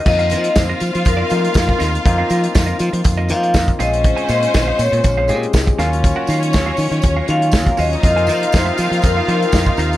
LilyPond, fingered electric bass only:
\new Staff \with { instrumentName = "Fingered electric bass" } { \clef bass \time 4/4 \key f \phrygian \tempo 4 = 120 f,8 f8 f,8 f16 f16 f,8 f8 f,8 ees,8 | f,8 f8 f,8 f16 f16 f,8 f8 f,8 bes,,8~ | bes,,8 bes,8 bes,,8 bes,16 bes,16 bes,,8 bes,8 c,8 ees,8~ | ees,8 ees8 ees,8 ees16 ees16 ees,8 ees8 ees,8 ees,8 |
f,8 f8 f,8 f16 f16 f,8 f8 f,8 ees,8 | }